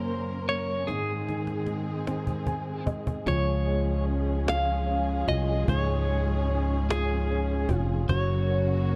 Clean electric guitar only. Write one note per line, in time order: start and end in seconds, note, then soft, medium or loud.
0.00 0.48 C5 medium
0.49 0.89 C#5 medium
0.87 2.84 G#4 medium
3.28 4.04 C#5 medium
4.49 5.28 F5 medium
5.29 5.69 D#5 medium
5.69 6.93 C#5 medium
6.91 7.76 G#4 medium
8.09 8.96 C#5 medium